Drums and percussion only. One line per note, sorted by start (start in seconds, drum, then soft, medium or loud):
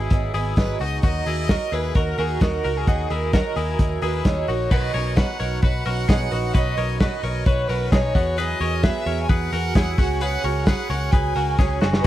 0.10 kick loud
0.10 closed hi-hat medium
0.34 open hi-hat medium
0.57 kick loud
0.57 snare loud
0.57 closed hi-hat medium
0.81 open hi-hat medium
1.03 kick loud
1.03 closed hi-hat medium
1.26 open hi-hat medium
1.49 kick medium
1.49 snare loud
1.49 closed hi-hat medium
1.72 open hi-hat medium
1.95 kick loud
1.95 closed hi-hat medium
2.18 open hi-hat medium
2.41 kick loud
2.41 snare loud
2.41 closed hi-hat medium
2.65 open hi-hat medium
2.87 kick loud
2.87 closed hi-hat medium
3.10 open hi-hat medium
3.33 kick loud
3.33 snare medium
3.33 closed hi-hat medium
3.57 open hi-hat medium
3.79 kick loud
3.79 closed hi-hat medium
4.02 open hi-hat medium
4.25 kick loud
4.25 snare loud
4.25 closed hi-hat medium
4.49 open hi-hat medium
4.71 kick loud
4.71 crash medium
4.94 open hi-hat medium
5.17 kick loud
5.17 snare loud
5.17 closed hi-hat medium
5.40 open hi-hat medium
5.62 kick loud
5.62 closed hi-hat medium
5.85 open hi-hat medium
6.09 kick loud
6.09 snare loud
6.09 closed hi-hat medium
6.32 open hi-hat medium
6.55 kick loud
6.55 closed hi-hat medium
6.77 open hi-hat medium
7.00 kick loud
7.00 snare loud
7.00 closed hi-hat medium
7.23 open hi-hat medium
7.46 kick loud
7.46 closed hi-hat medium
7.69 open hi-hat medium
7.92 kick loud
7.92 snare loud
7.92 closed hi-hat medium
8.15 kick loud
8.15 open hi-hat medium
8.38 closed hi-hat medium
8.61 open hi-hat medium
8.83 kick loud
8.83 snare loud
8.83 closed hi-hat medium
9.06 open hi-hat medium
9.29 kick loud
9.29 closed hi-hat medium
9.53 open hi-hat medium
9.75 kick loud
9.75 snare loud
9.75 closed hi-hat medium
9.98 kick loud
9.98 open hi-hat medium
10.21 closed hi-hat medium
10.44 open hi-hat medium
10.67 kick loud
10.67 snare loud
10.67 closed hi-hat medium
10.89 open hi-hat medium
11.12 kick loud
11.12 closed hi-hat medium
11.36 open hi-hat medium
11.59 kick loud
11.59 snare medium
11.82 snare medium
11.93 snare medium